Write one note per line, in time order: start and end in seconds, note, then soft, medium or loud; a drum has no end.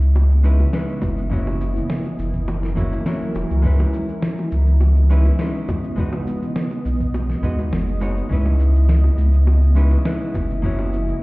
0.00 0.65 C#2 medium
0.00 1.29 C#3 medium
0.00 5.94 E3 medium
0.00 0.40 G#3 medium
0.00 1.29 B3 medium
0.00 0.41 C#4 medium
0.00 0.41 D#4 medium
0.00 0.42 E4 medium
0.00 0.42 B4 medium
0.00 1.29 D#5 medium
0.00 shaker soft
0.15 high bongo medium
0.15 shaker soft
0.30 shaker soft
0.43 0.70 G#3 medium
0.43 0.70 C#4 medium
0.43 0.70 D#4 medium
0.43 0.70 E4 medium
0.43 0.71 B4 medium
0.43 shaker medium
0.60 high bongo medium
0.60 shaker soft
0.73 1.28 G#3 medium
0.73 1.28 C#4 medium
0.73 1.29 D#4 medium
0.73 1.29 E4 medium
0.73 1.29 B4 medium
0.73 snare loud
0.73 shaker soft
0.88 shaker soft
1.02 1.82 F#1 medium
1.02 kick medium
1.02 high bongo medium
1.02 shaker medium
1.18 shaker soft
1.30 3.62 F#3 medium
1.30 2.73 A#3 medium
1.30 2.73 C#4 medium
1.30 2.74 E4 medium
1.30 2.74 F#4 medium
1.30 3.62 A#4 medium
1.30 2.75 C#5 loud
1.30 kick loud
1.30 shaker soft
1.47 high bongo medium
1.47 shaker soft
1.61 shaker medium
1.76 shaker soft
1.90 snare loud
1.90 shaker soft
2.05 high bongo medium
2.05 shaker soft
2.19 2.98 F#1 medium
2.19 shaker medium
2.34 kick medium
2.34 shaker soft
2.48 high bongo loud
2.48 shaker soft
2.63 snare soft
2.63 shaker soft
2.76 3.02 A#3 medium
2.76 3.03 C#4 medium
2.76 3.03 E4 medium
2.76 3.03 F#4 medium
2.76 3.03 C#5 medium
2.76 kick loud
2.76 shaker medium
2.92 high bongo medium
2.92 shaker soft
3.06 3.61 A#3 medium
3.06 3.61 C#4 medium
3.06 3.61 E4 medium
3.06 3.62 F#4 medium
3.06 3.62 C#5 medium
3.06 snare loud
3.06 shaker soft
3.21 shaker soft
3.35 3.45 E1 medium
3.35 high bongo medium
3.35 shaker medium
3.51 3.86 C#2 medium
3.51 shaker soft
3.62 5.95 C#3 medium
3.62 5.06 G#3 medium
3.62 10.60 B3 medium
3.62 5.06 C#4 medium
3.62 5.07 D#4 medium
3.62 5.07 E4 medium
3.62 10.60 D#5 medium
3.62 kick loud
3.62 shaker soft
3.66 5.08 B4 loud
3.80 high bongo medium
3.80 shaker soft
3.93 shaker medium
4.09 shaker soft
4.22 snare loud
4.22 shaker soft
4.38 high bongo medium
4.38 shaker soft
4.51 5.31 C#2 medium
4.51 shaker medium
4.67 shaker soft
4.81 high bongo medium
4.81 shaker soft
4.96 shaker soft
5.09 5.36 G#3 medium
5.09 5.36 C#4 medium
5.09 5.36 D#4 medium
5.09 5.36 E4 medium
5.09 5.37 B4 medium
5.09 shaker medium
5.25 high bongo medium
5.25 shaker soft
5.39 5.94 G#3 medium
5.39 5.94 C#4 medium
5.39 5.95 D#4 medium
5.39 5.95 E4 medium
5.39 5.95 B4 medium
5.39 snare loud
5.39 shaker soft
5.55 shaker soft
5.68 kick loud
5.68 high bongo loud
5.68 shaker medium
5.84 shaker soft
5.96 7.39 G#3 medium
5.96 8.29 G#3 medium
5.96 7.40 B3 medium
5.96 7.40 D#4 medium
5.96 7.41 F#4 medium
5.96 kick loud
5.96 shaker soft
6.00 7.41 B4 medium
6.13 high bongo loud
6.13 shaker soft
6.27 shaker medium
6.42 shaker soft
6.56 snare medium
6.56 shaker soft
6.71 high bongo medium
6.71 shaker soft
6.85 7.35 B1 medium
6.85 shaker medium
7.00 kick medium
7.00 shaker soft
7.14 high bongo medium
7.14 shaker soft
7.30 snare soft
7.30 shaker soft
7.43 7.72 D#2 loud
7.43 7.98 G#3 medium
7.43 7.98 B3 medium
7.43 7.98 D#4 medium
7.43 7.99 F#4 medium
7.43 7.99 D#5 medium
7.43 kick loud
7.43 shaker medium
7.59 high bongo medium
7.59 shaker soft
7.73 8.23 F#1 medium
7.73 snare medium
7.73 shaker soft
7.88 shaker soft
8.00 8.27 G#3 medium
8.00 8.27 B3 medium
8.00 8.28 D#4 medium
8.00 8.28 F#4 medium
8.00 8.28 C#5 medium
8.00 high bongo medium
8.00 shaker medium
8.17 shaker soft
8.29 9.10 C#2 medium
8.29 10.61 C#3 medium
8.29 11.23 E3 medium
8.29 9.72 G#3 medium
8.29 9.73 C#4 medium
8.29 9.73 D#4 medium
8.29 9.74 E4 medium
8.29 9.74 B4 medium
8.29 kick loud
8.29 shaker soft
8.46 high bongo medium
8.46 shaker soft
8.60 shaker medium
8.75 shaker soft
8.89 snare medium
8.89 shaker soft
9.04 high bongo medium
9.04 shaker soft
9.18 9.97 C#2 medium
9.18 shaker medium
9.33 shaker soft
9.47 high bongo medium
9.47 shaker soft
9.62 shaker soft
9.75 10.02 G#3 medium
9.75 10.02 C#4 medium
9.75 10.02 D#4 medium
9.75 10.02 E4 medium
9.75 10.03 B4 medium
9.75 shaker medium
9.91 high bongo medium
9.91 shaker soft
10.04 10.60 G#3 medium
10.04 10.60 C#4 medium
10.04 10.60 D#4 medium
10.04 10.61 E4 medium
10.04 10.61 B4 medium
10.04 snare medium
10.04 shaker soft
10.21 shaker soft
10.34 11.14 F#1 loud
10.34 kick loud
10.34 high bongo medium
10.34 shaker medium
10.50 shaker soft
10.62 11.23 F#3 medium
10.62 11.23 A#3 medium
10.62 11.23 C#4 medium
10.62 11.23 E4 medium
10.62 11.23 F#4 medium
10.62 11.23 A#4 medium
10.62 11.23 C#5 medium
10.62 kick loud
10.62 shaker soft
10.79 high bongo medium
10.79 shaker soft
10.93 shaker medium
11.08 shaker soft